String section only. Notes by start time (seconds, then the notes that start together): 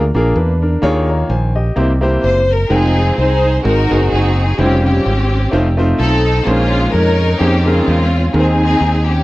2.24 C5
2.51 A#4
2.71 C4 D#4 G#4
3.18 D#4 G#4 C5
3.65 D#4 F#4 A#4
4.12 C4 D#4 G#4
4.60 C4 C#4 G4
4.85 C4 C#4 G4
6.00 C4 D#4 A4
6.46 G#3 C#4 F4
6.93 C#4 D#4 A#4
7.41 C4 C#4 G4
7.67 G#3 C#4 F4
8.34 C4 D#4 G#4
9.07 A#3 C#4 G4